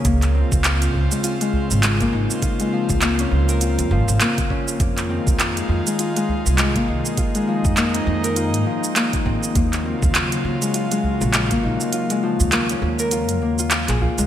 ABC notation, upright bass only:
X:1
M:4/4
L:1/16
Q:"Swing 16ths" 1/4=101
K:Db
V:1 name="Upright bass" clef=bass
D,,2 z D,,2 z D,, z4 A,,,2 z A,,, z | z3 D,,2 z D,,3 F,, A,,, A,,, z4 | F,,2 z F,,2 z F,, z4 C,,2 z C,, z | z3 F,,2 z F,,3 A,, z4 A,, z |
E,,2 z E,,2 z E,, z4 B,,,2 z B,,, z | z3 E,,2 z E,,3 G,, E,,3 B,,, z D,, |]